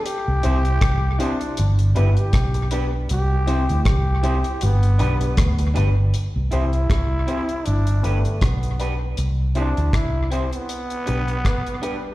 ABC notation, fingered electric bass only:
X:1
M:4/4
L:1/16
Q:"Swing 16ths" 1/4=79
K:C
V:1 name="Fingered electric bass" clef=bass
z C,, C,,2 C,,2 z2 G,,,2 G,,, z B,,,4 | C,,3 D,, C,,3 z G,,,2 B,,,2 D,,2 G,,,2 | z C,, C,,2 C,,2 z2 G,,,2 G,,, z B,,,4 | C,,3 D,, C,,3 z3 B,,,2 z4 |]